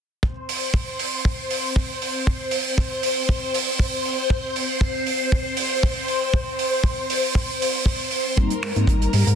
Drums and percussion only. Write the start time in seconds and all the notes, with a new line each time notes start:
0.23 kick
0.49 open hi-hat
0.74 kick
0.99 open hi-hat
1.25 kick
1.50 open hi-hat
1.76 kick
2.02 open hi-hat
2.27 kick
2.51 open hi-hat
2.78 kick
3.03 open hi-hat
3.29 kick
3.54 open hi-hat
3.79 kick
4.05 open hi-hat
4.30 kick
4.56 open hi-hat
4.81 kick
5.06 open hi-hat
5.32 kick
5.57 open hi-hat
5.83 kick
6.08 open hi-hat
6.34 kick
6.59 open hi-hat
6.84 kick
7.10 open hi-hat
7.35 kick
7.62 open hi-hat
7.86 kick
8.11 open hi-hat
8.37 kick, closed hi-hat
8.50 closed hi-hat
8.63 finger snap, open hi-hat
8.76 closed hi-hat
8.87 kick, closed hi-hat
9.02 closed hi-hat
9.13 open hi-hat
9.27 closed hi-hat